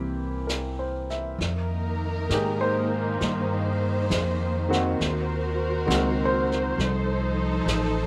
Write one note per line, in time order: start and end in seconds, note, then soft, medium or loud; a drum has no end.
0.00 1.34 C2 medium
0.00 1.39 E3 soft
0.00 1.39 A#3 soft
0.00 1.39 C4 soft
0.00 1.40 G4 soft
0.47 1.06 A#4 soft
0.47 snare soft
0.47 hi-hat pedal soft
0.79 1.26 C5 soft
1.10 1.57 E5 soft
1.10 snare soft
1.37 2.26 F2 medium
1.37 6.74 D#3 medium
1.37 4.94 A#3 medium
1.37 4.95 D#4 medium
1.37 3.17 A#4 medium
1.37 brush sweep soft
1.37 snare soft
2.29 3.17 G#2 medium
2.29 3.68 D#3 soft
2.29 3.70 A#3 soft
2.29 3.70 G4 soft
2.29 3.69 G#4 soft
2.29 snare soft
2.29 hi-hat pedal soft
2.34 2.61 A#4 soft
2.61 3.09 C5 medium
3.19 4.07 G2 medium
3.19 4.97 C5 medium
3.19 brush sweep soft
3.19 snare soft
4.10 4.97 F2 medium
4.10 snare soft
4.10 hi-hat pedal soft
4.69 4.95 D#3 medium
4.69 4.96 A#3 soft
4.69 4.96 C4 soft
4.69 4.96 F#4 medium
4.69 snare soft
4.99 5.87 D#2 medium
4.99 6.77 F#4 medium
4.99 6.76 A#4 medium
4.99 8.07 C5 medium
4.99 brush sweep soft
4.99 snare soft
5.86 6.75 C#2 medium
5.86 6.42 D#3 soft
5.86 6.43 A#3 soft
5.86 6.43 C4 soft
5.86 6.43 F#4 medium
5.86 snare soft
5.86 hi-hat pedal soft
5.94 6.20 A#4 medium
6.25 6.71 C5 medium
6.52 snare soft
6.78 7.65 C2 medium
6.78 8.07 F3 medium
6.78 8.07 D#4 medium
6.78 8.07 A4 medium
6.78 brush sweep soft
6.78 snare soft
7.66 8.07 A1 medium
7.66 snare soft
7.66 hi-hat pedal soft